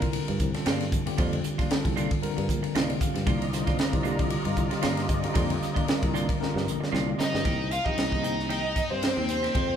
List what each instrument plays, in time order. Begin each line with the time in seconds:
Already playing: fretless electric bass C2, tine electric piano D3 G3 C4 F4 A#4
0.02 muted clean electric guitar stroke, kick, ride
0.13 ride
0.28 fretless electric bass G2, muted clean electric guitar stroke, ride
0.39 fretless electric bass C2, kick, hi-hat pedal
0.54 tine electric piano D3 G3 C4 F4 A4, muted clean electric guitar stroke, snare, ride
0.66 fretless electric bass G2, clean electric guitar D#3 A#3 D4 F4, snare, ride
0.81 snare, ride
0.92 muted clean electric guitar stroke, kick, hi-hat pedal
1.06 tine electric piano D3 G3 C4 F4 G4, muted clean electric guitar stroke, ride
1.18 fretless electric bass F2, clean electric guitar D#3 A#3 D4 F4, kick, ride
1.33 ride
1.44 muted clean electric guitar stroke, hi-hat pedal
1.58 clean electric guitar A#3 D4 F4, kick, snare, ride
1.71 tine electric piano D3 G3 C4 F4 A4, muted clean electric guitar stroke, snare, ride
1.85 fretless electric bass C2, muted clean electric guitar stroke, kick, ride
1.96 clean electric guitar D#3 A#3 D4 F4, hi-hat pedal
2.11 muted clean electric guitar stroke, kick, ride
2.22 tine electric piano D3 G3 C4 F4 A#4, muted fretless electric bass stroke, ride
2.37 fretless electric bass G2, muted clean electric guitar stroke, ride
2.49 fretless electric bass A#1, kick, hi-hat pedal
2.63 muted clean electric guitar stroke, muted fretless electric bass stroke, ride
2.75 fretless electric bass C2, clean electric guitar D#3 A#3 D4 F4, tine electric piano D#5, snare, ride
2.89 tine electric piano D3 G3 C4 F4 G4, ride
3.01 tine electric piano F5, muted clean electric guitar stroke, kick, hi-hat pedal
3.14 fretless electric bass G2, muted clean electric guitar stroke, snare, ride
3.26 fretless electric bass C2, clean electric guitar D#3 A#3 D4 F4, analog synth pad F4 D5 D#5 A#5, kick, ride
3.42 ride
3.53 tine electric piano D3 G3 C4 F4 C5, muted clean electric guitar stroke, snare, hi-hat pedal
3.67 clean electric guitar A#3 D4 F4, kick, snare, ride
3.78 muted clean electric guitar stroke, snare, ride
3.92 fretless electric bass C2, muted clean electric guitar stroke, kick, ride
4.03 tine electric piano D3 G3 C4 F4 G4, clean electric guitar D#3 A#3 D4 F4, hi-hat pedal
4.19 muted clean electric guitar stroke, kick, ride
4.30 ride
4.45 fretless electric bass G2, muted clean electric guitar stroke, ride
4.57 fretless electric bass C2, kick, hi-hat pedal
4.71 tine electric piano D3 G3 C4 F4 G4, muted clean electric guitar stroke, snare, ride
4.82 fretless electric bass G2, clean electric guitar D#3 A#3 D4 F4, snare, ride
4.97 snare, ride
5.08 muted clean electric guitar stroke, kick, hi-hat pedal
5.23 tine electric piano D3 G3 C4 F4 G4, muted clean electric guitar stroke, ride
5.34 fretless electric bass F2, clean electric guitar D#3 A#3 D4 F4, kick, ride
5.50 ride
5.61 muted clean electric guitar stroke, snare, hi-hat pedal
5.74 clean electric guitar A#3 D4 F4, kick, ride
5.87 tine electric piano D3 G3 C4 F4 A#4, muted clean electric guitar stroke, snare, ride
6.02 fretless electric bass C2, muted clean electric guitar stroke, kick, ride
6.14 clean electric guitar D#3 A#3 D4 F4, snare, hi-hat pedal
6.28 muted clean electric guitar stroke, kick, ride
6.40 tine electric piano D3 G3 C4 F4 A#4, muted fretless electric bass stroke, snare
6.54 fretless electric bass G2, muted clean electric guitar stroke, snare
6.67 fretless electric bass A#1, hi-hat pedal
6.80 muted clean electric guitar stroke, muted fretless electric bass stroke, snare
6.92 fretless electric bass C2, clean electric guitar D#3 A#3 D4 F4, snare
7.07 tine electric piano D3 G3 C4 F4 G4
7.18 overdriven electric guitar D#4, violin D#5, muted clean electric guitar stroke, muted fretless electric bass stroke, snare, hi-hat pedal
7.33 fretless electric bass G2, muted clean electric guitar stroke, snare
7.44 fretless electric bass C2, clean electric guitar D#3 A#3 C4 G4, kick, ride
7.59 muted clean electric guitar stroke
7.70 overdriven electric guitar F4, violin F5, muted clean electric guitar stroke, hi-hat pedal, ride
7.85 fretless electric bass A#1, tine electric piano C3 F3 A#3 D#4 G4, clean electric guitar A#3 C4 G4, overdriven electric guitar D#4, violin D#5, kick
7.97 fretless electric bass C2, muted clean electric guitar stroke, snare, ride
8.12 kick, snare
8.23 clean electric guitar D#3 A#3 C4 G4, hi-hat pedal, ride
8.37 muted clean electric guitar stroke, snare
8.49 clean electric guitar D#3 A#3 C4 G4, overdriven electric guitar D#4, violin D#5, ride
8.64 muted clean electric guitar stroke
8.75 muted clean electric guitar stroke, kick, hi-hat pedal, ride
8.91 fretless electric bass G2, overdriven electric guitar C4, violin C5
9.02 muted clean electric guitar stroke, snare, ride
9.17 fretless electric bass D#2, tine electric piano C3 F3 A#3 D#4 G4, clean electric guitar A#3 C4 G4
9.28 overdriven electric guitar C4, violin C5, muted clean electric guitar stroke, hi-hat pedal, ride
9.43 clean electric guitar A#3 C4 G4, snare, ride
9.54 fretless electric bass F2, clean electric guitar D#3 G#3 C4 G4, kick, ride
9.69 muted clean electric guitar stroke